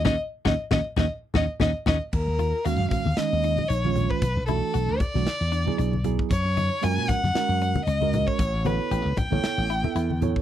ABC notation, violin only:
X:1
M:4/4
L:1/16
Q:"Swing 16ths" 1/4=115
K:Ebm
V:1 name="Violin"
e z2 e z e z e z2 e z e z e z | [K:Gblyd] B4 f2 f2 e4 d3 _c- | _c2 =A4 =d8 z2 | d4 a2 g6 e3 d- |
d2 =B4 =g8 z2 |]